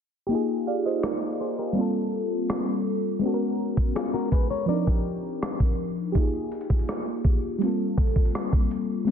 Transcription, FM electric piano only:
0.27 1.73 A#3 medium
0.27 1.58 G4 medium
0.31 1.74 D#4 medium
0.31 1.75 F4 medium
0.31 0.68 G#4 medium
0.67 0.85 D5 soft
0.67 0.84 F5 medium
0.86 1.03 C5 medium
0.86 1.03 D#5 medium
1.04 1.38 A#4 medium
1.04 1.38 D5 medium
1.40 1.58 G#4 medium
1.40 1.57 C5 medium
1.59 1.93 G4 soft
1.59 1.93 A#4 medium
1.73 3.18 G3 medium
1.73 3.19 A#3 medium
1.77 3.20 C4 medium
1.77 3.21 F4 medium
1.81 3.22 A4 medium
3.19 4.64 G#3 medium
3.19 4.65 B3 medium
3.19 4.66 C#4 medium
3.26 4.67 F#4 medium
3.26 3.31 A4 medium
3.34 4.72 A#4 medium
4.66 6.11 F3 medium
4.66 6.12 C4 medium
4.66 6.13 D4 medium
4.72 6.14 D#4 medium
4.72 6.15 A#4 medium
6.12 7.58 A#3 medium
6.12 7.57 G4 medium
6.16 7.59 D#4 medium
6.16 7.60 F4 medium
6.20 7.61 G#4 medium
7.58 9.03 G3 medium
7.58 7.67 A3 medium
7.63 9.05 C4 medium
7.63 9.06 F4 medium
7.67 9.08 A#3 medium
7.67 9.07 A4 medium
9.05 9.11 G#3 medium
9.05 9.11 B3 medium

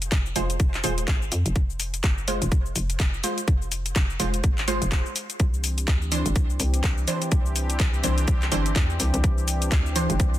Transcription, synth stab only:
0.36 0.46 G#3 medium
0.36 0.46 F4 medium
0.36 0.46 C5 medium
0.84 0.94 G#3 loud
0.84 0.94 F4 medium
0.84 0.94 C5 loud
2.28 2.43 G#3 medium
2.28 2.43 F4 medium
2.28 2.43 C5 loud
3.24 3.39 G#3 medium
3.24 3.39 F4 medium
3.24 3.39 C5 medium
4.20 4.30 G#3 medium
4.20 4.30 F4 medium
4.20 4.30 C5 medium
4.68 4.78 G#3 medium
4.68 4.78 F4 medium
4.68 4.78 C5 loud
4.92 5.02 G#3 medium
4.92 5.02 F4 medium
4.92 5.02 C5 medium
6.12 6.27 E3 medium
6.12 6.27 D4 medium
6.12 6.27 C5 loud
7.08 7.23 E3 medium
7.08 7.23 D4 medium
7.08 7.23 C5 medium
8.04 8.14 E3 medium
8.04 8.14 D4 medium
8.04 8.14 C5 loud
8.52 8.62 E3 loud
8.52 8.62 D4 medium
8.52 8.62 C5 loud
9.96 10.11 E3 medium
9.96 10.11 D4 medium
9.96 10.11 C5 loud

